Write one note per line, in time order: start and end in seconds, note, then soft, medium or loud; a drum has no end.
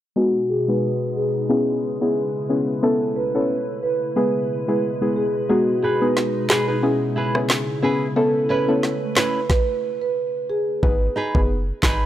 0.16 1.48 B2 medium
0.16 0.39 G#3 medium
0.16 2.80 G#3 medium
0.16 0.40 B3 medium
0.16 1.48 D#4 medium
0.16 0.40 D#4 medium
0.16 0.33 F#4 medium
0.16 0.40 G#4 loud
0.16 8.12 B4 medium
0.50 0.66 G#4 medium
0.68 0.89 G#3 medium
0.68 0.89 B3 medium
0.68 0.89 D#4 medium
0.68 0.89 G#4 medium
0.68 0.81 B4 medium
1.16 1.33 G#4 medium
1.49 4.14 C#3 medium
1.49 1.97 B3 medium
1.49 1.97 C#4 medium
1.49 1.97 E4 medium
1.49 2.82 E4 medium
1.49 1.66 G#4 medium
1.49 1.97 G#4 medium
2.01 2.22 B3 medium
2.01 2.22 C#4 medium
2.01 2.22 E4 medium
2.01 2.14 G#4 medium
2.01 2.22 G#4 medium
2.49 2.73 B3 medium
2.49 2.73 C#4 medium
2.49 2.73 E4 medium
2.49 2.73 G#4 medium
2.83 4.15 A3 medium
2.83 3.30 B3 loud
2.83 3.30 C#4 medium
2.83 4.15 E4 medium
2.83 3.31 E4 medium
2.83 2.99 A4 medium
2.83 3.31 A4 loud
3.16 3.33 B4 medium
3.35 3.55 B3 medium
3.35 3.55 C#4 medium
3.35 3.56 E4 medium
3.35 3.56 A4 medium
3.35 3.48 C#5 medium
3.83 3.99 B4 medium
4.16 6.80 B2 medium
4.16 4.64 G#3 medium
4.16 8.12 G#3 medium
4.16 4.64 B3 medium
4.16 5.48 E4 medium
4.16 4.64 E4 medium
4.16 4.64 G#4 loud
4.16 4.33 B4 medium
4.68 4.89 G#3 medium
4.68 4.89 B3 medium
4.68 4.89 E4 medium
4.68 4.89 G#4 medium
4.68 4.81 B4 medium
5.01 5.22 G#3 medium
5.01 5.22 B3 medium
5.01 5.22 E4 medium
5.01 5.22 G#4 medium
5.16 5.33 G#4 medium
5.49 5.73 G#3 loud
5.49 5.73 B3 medium
5.49 5.73 D#4 medium
5.49 6.82 D#4 medium
5.49 5.66 F#4 loud
5.49 5.73 G#4 loud
5.82 6.06 D#4 medium
5.82 5.99 G#4 medium
5.82 6.06 G#4 medium
5.82 6.06 B4 medium
6.01 6.22 G#3 medium
6.01 6.22 B3 medium
6.01 6.22 D#4 medium
6.01 6.22 G#4 medium
6.01 6.14 B4 medium
6.17 snare medium
6.49 6.68 D#4 medium
6.49 6.66 G#4 medium
6.49 6.68 G#4 medium
6.49 6.67 B4 medium
6.49 snare loud
6.49 clap medium
6.68 6.84 D#4 soft
6.68 6.83 G#4 medium
6.68 6.83 B4 medium
6.83 9.47 C#3 medium
6.83 7.30 B3 medium
6.83 7.30 C#4 medium
6.83 7.31 E4 medium
6.83 9.47 E4 medium
6.83 6.99 G#4 medium
6.83 7.31 G#4 medium
7.16 7.39 E4 medium
7.16 7.39 G#4 medium
7.16 7.40 B4 medium
7.35 7.55 B3 medium
7.35 7.55 C#4 medium
7.35 7.56 E4 medium
7.35 7.48 G#4 medium
7.35 7.56 G#4 medium
7.35 cross-stick medium
7.50 snare loud
7.50 clap medium
7.82 8.06 B3 medium
7.82 8.06 C#4 medium
7.82 8.06 E4 medium
7.82 8.06 G#4 medium
7.82 8.06 B4 medium
8.16 9.48 A3 medium
8.16 8.64 B3 medium
8.16 8.64 C#4 medium
8.16 8.64 E4 medium
8.16 8.33 A4 medium
8.16 8.64 A4 loud
8.16 9.48 B4 medium
8.49 8.72 C#4 medium
8.49 8.73 E4 medium
8.49 8.66 B4 medium
8.49 8.73 B4 medium
8.68 8.89 B3 medium
8.68 8.89 C#4 medium
8.68 8.89 E4 medium
8.68 8.89 A4 medium
8.68 8.81 C#5 medium
8.83 snare medium
9.16 9.39 C#4 medium
9.16 9.39 E4 medium
9.16 9.33 B4 medium
9.16 9.40 B4 medium
9.16 snare loud
9.16 clap medium
9.50 9.66 B4 medium
9.50 kick loud
9.50 snare medium
10.02 10.14 B4 medium
10.50 10.66 G#4 medium
10.83 11.09 G#1 loud
10.83 11.06 B3 loud
10.83 11.06 D#4 medium
10.83 11.06 G#4 medium
10.83 11.06 B4 loud
10.83 kick loud
11.16 11.39 D#4 medium
11.16 11.39 G#4 medium
11.16 11.40 B4 medium
11.35 11.72 F#1 medium
11.35 11.55 B3 medium
11.35 11.55 D#4 medium
11.35 11.56 G#4 medium
11.35 11.56 B4 medium
11.35 kick medium
11.82 12.06 G#1 medium
11.82 12.06 D#4 medium
11.82 12.06 G#4 medium
11.82 12.06 B4 medium
11.82 kick medium
11.82 snare loud
11.82 clap medium